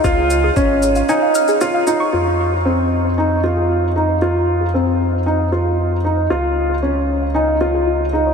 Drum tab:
SH |x-x-x-xxx-xxx-x-|----------------|----------------|----------------|
BD |o---o-----------|----------------|----------------|----------------|